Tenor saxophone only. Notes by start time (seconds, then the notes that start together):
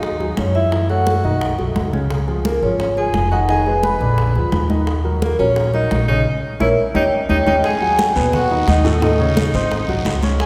Already playing: D#4
0.36 C#4
0.55 E4
0.89 F#4
2.45 A#3
2.62 C#4
2.80 C#4
2.97 G#4
3.31 F#4
3.49 G#4
3.83 B4
5.22 A#3
5.39 C#4
5.73 D#4
6.08 D#4
6.61 E4
6.95 D#4
7.30 D#4
7.47 D#4
7.65 G#4
8.33 F#4
8.68 D#4
9.03 D#4
10.40 G#4